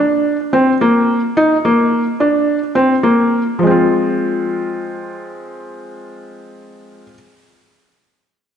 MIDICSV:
0, 0, Header, 1, 2, 480
1, 0, Start_track
1, 0, Tempo, 555556
1, 1182, Time_signature, 4, 2, 24, 8
1, 7397, End_track
2, 0, Start_track
2, 0, Title_t, "Felt piano"
2, 0, Program_c, 0, 0
2, 0, Note_on_c, 0, 62, 78
2, 308, Note_off_c, 0, 62, 0
2, 457, Note_on_c, 0, 60, 82
2, 623, Note_off_c, 0, 60, 0
2, 701, Note_on_c, 0, 58, 85
2, 1029, Note_off_c, 0, 58, 0
2, 1183, Note_on_c, 0, 63, 92
2, 1346, Note_off_c, 0, 63, 0
2, 1424, Note_on_c, 0, 58, 83
2, 1751, Note_off_c, 0, 58, 0
2, 1903, Note_on_c, 0, 62, 80
2, 2230, Note_off_c, 0, 62, 0
2, 2378, Note_on_c, 0, 60, 81
2, 2543, Note_off_c, 0, 60, 0
2, 2620, Note_on_c, 0, 58, 86
2, 2948, Note_off_c, 0, 58, 0
2, 3100, Note_on_c, 0, 53, 66
2, 3135, Note_on_c, 0, 56, 66
2, 3169, Note_on_c, 0, 60, 69
2, 3204, Note_on_c, 0, 65, 73
2, 6059, Note_off_c, 0, 53, 0
2, 6094, Note_off_c, 0, 56, 0
2, 6128, Note_off_c, 0, 60, 0
2, 6164, Note_off_c, 0, 65, 0
2, 7397, End_track
0, 0, End_of_file